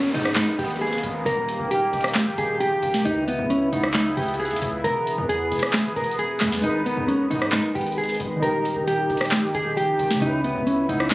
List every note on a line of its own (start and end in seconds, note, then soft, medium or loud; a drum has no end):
0.00 0.13 D#2 loud
0.00 1.24 G#3 medium
0.00 3.02 A#3 medium
0.00 1.24 B3 medium
0.00 downlifter medium
0.14 0.36 G#2 loud
0.14 0.32 D#4 medium
0.14 closed hi-hat medium
0.25 cross-stick loud
0.36 0.54 D#4 medium
0.36 snare loud
0.36 clap medium
0.36 closed hi-hat loud
0.59 1.02 G#1 loud
0.59 0.77 G4 medium
0.59 closed hi-hat medium
0.65 closed hi-hat medium
0.70 closed hi-hat medium
0.76 closed hi-hat medium
0.81 0.99 G#4 medium
0.81 closed hi-hat soft
0.87 closed hi-hat medium
0.93 closed hi-hat medium
0.98 closed hi-hat medium
1.03 1.25 G#1 loud
1.03 closed hi-hat medium
1.26 1.58 D#1 loud
1.26 3.04 D#3 medium
1.26 3.04 G4 medium
1.26 1.68 A#4 loud
1.26 closed hi-hat medium
1.49 closed hi-hat medium
1.60 1.92 D#1 loud
1.71 2.34 G4 medium
1.71 closed hi-hat medium
1.93 2.29 D#1 loud
1.93 closed hi-hat soft
2.01 cross-stick loud
2.01 closed hi-hat medium
2.08 closed hi-hat medium
2.15 snare loud
2.15 clap medium
2.15 closed hi-hat medium
2.27 2.38 C#1 loud
2.38 2.73 D#1 loud
2.38 2.56 G#4 medium
2.38 closed hi-hat medium
2.60 3.03 G4 loud
2.60 closed hi-hat medium
2.72 2.82 A#1 loud
2.83 3.04 D#1 loud
2.83 closed hi-hat medium
2.83 open hi-hat medium
2.94 snare medium
2.94 closed hi-hat medium
3.05 3.38 C#2 loud
3.05 4.83 C#3 medium
3.05 4.83 B3 medium
3.05 3.23 D#4 loud
3.05 4.83 E4 medium
3.05 closed hi-hat medium
3.28 3.45 B3 medium
3.28 closed hi-hat medium
3.39 3.71 C#2 loud
3.50 3.68 C#4 medium
3.50 closed hi-hat medium
3.72 4.15 C#2 loud
3.72 3.90 D#4 medium
3.72 closed hi-hat medium
3.83 cross-stick loud
3.94 4.12 D#4 medium
3.94 snare loud
3.94 clap loud
3.94 closed hi-hat loud
4.17 4.52 C#2 loud
4.17 4.35 G4 medium
4.17 closed hi-hat medium
4.23 closed hi-hat medium
4.28 closed hi-hat medium
4.34 closed hi-hat medium
4.40 4.57 G#4 medium
4.40 closed hi-hat soft
4.45 closed hi-hat medium
4.51 4.61 E2 loud
4.51 closed hi-hat medium
4.56 closed hi-hat medium
4.62 4.84 C#2 loud
4.62 closed hi-hat medium
4.84 5.17 E1 loud
4.84 6.62 E3 medium
4.84 8.39 B3 medium
4.84 6.62 G#4 medium
4.84 5.26 A#4 loud
4.84 closed hi-hat medium
5.07 closed hi-hat medium
5.18 5.50 E2 loud
5.29 5.92 G#4 medium
5.29 closed hi-hat medium
5.52 5.87 E1 loud
5.52 closed hi-hat medium
5.52 open hi-hat medium
5.59 cross-stick loud
5.59 closed hi-hat medium
5.67 closed hi-hat soft
5.73 snare loud
5.73 clap medium
5.73 closed hi-hat loud
5.85 5.96 G#1 loud
5.96 6.39 E1 loud
5.96 6.14 A#4 medium
5.96 closed hi-hat soft
6.04 closed hi-hat medium
6.11 closed hi-hat medium
6.19 6.61 G#4 medium
6.19 closed hi-hat medium
6.40 6.63 E2 loud
6.40 snare medium
6.40 clap medium
6.40 open hi-hat medium
6.52 snare medium
6.58 8.36 G#3 medium
6.58 8.38 D#4 medium
6.63 6.96 G#1 loud
6.63 8.41 G#3 medium
6.63 6.81 D#4 loud
6.63 8.40 A#4 medium
6.63 closed hi-hat medium
6.69 8.42 B4 medium
6.86 7.04 B3 medium
6.86 closed hi-hat medium
6.97 7.29 D#2 loud
7.08 7.26 C#4 medium
7.08 closed hi-hat medium
7.30 7.52 G#2 loud
7.30 7.48 D#4 medium
7.30 closed hi-hat medium
7.42 cross-stick loud
7.52 7.71 D#4 loud
7.52 snare loud
7.52 clap medium
7.52 closed hi-hat loud
7.75 8.18 G#1 loud
7.75 7.93 G4 medium
7.75 closed hi-hat medium
7.81 closed hi-hat medium
7.87 closed hi-hat medium
7.92 closed hi-hat medium
7.98 8.16 G#4 medium
7.98 closed hi-hat soft
8.03 closed hi-hat medium
8.09 closed hi-hat medium
8.15 closed hi-hat medium
8.20 8.42 G#1 loud
8.20 closed hi-hat medium
8.36 10.15 D#3 medium
8.36 10.17 D#4 medium
8.42 8.75 D#1 loud
8.42 10.20 D#3 medium
8.42 10.20 G4 medium
8.42 10.19 G4 medium
8.42 8.85 A#4 loud
8.42 closed hi-hat medium
8.47 10.21 A#4 medium
8.65 closed hi-hat medium
8.76 9.08 D#1 loud
8.88 9.51 G4 medium
8.88 closed hi-hat medium
9.10 9.45 D#1 loud
9.10 closed hi-hat soft
9.17 cross-stick loud
9.17 closed hi-hat medium
9.25 closed hi-hat medium
9.31 snare loud
9.31 clap medium
9.31 closed hi-hat loud
9.43 9.54 C#1 loud
9.55 9.90 D#1 loud
9.55 9.72 G#4 medium
9.55 closed hi-hat medium
9.77 10.19 G4 loud
9.77 closed hi-hat medium
9.88 9.99 A#1 loud
9.99 10.21 D#1 loud
9.99 closed hi-hat medium
9.99 open hi-hat medium
10.11 snare medium
10.11 closed hi-hat medium
10.15 11.14 C#3 medium
10.15 11.14 C#4 medium
10.22 10.54 C#2 loud
10.22 11.14 C#3 medium
10.22 11.14 B3 medium
10.22 10.40 D#4 loud
10.22 11.14 E4 medium
10.22 closed hi-hat medium
10.27 11.14 B4 medium
10.44 10.62 B3 medium
10.44 closed hi-hat medium
10.55 10.88 C#2 loud
10.67 10.84 C#4 medium
10.67 closed hi-hat medium
10.89 11.14 C#2 loud
10.89 11.07 D#4 medium
10.89 closed hi-hat medium
11.00 cross-stick loud
11.11 11.14 D#4 medium
11.11 snare loud
11.11 clap medium